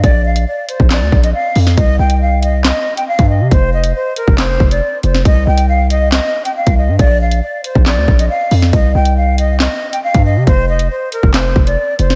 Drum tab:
HH |x--x--x-x--x--o-|x--x--x-x--x-x--|x--x--x-x--x--x-|x--x--x-x--x-x--|
CP |--------x-------|--------x-------|--------x-------|--------x-------|
SD |--------o------o|--------o-------|--------o------o|--------o-------|
BD |o------o--o-----|o------------o--|o------o--o-----|o------------o--|

HH |x--x--x-x--x--o-|x--x--x-x--x-x--|x--x--x-x--x--x-|
CP |--------x-------|--------x-------|--------x-------|
SD |--------o------o|--------o-------|--------o------o|
BD |o------o--o-----|o------------o--|o------o--o-----|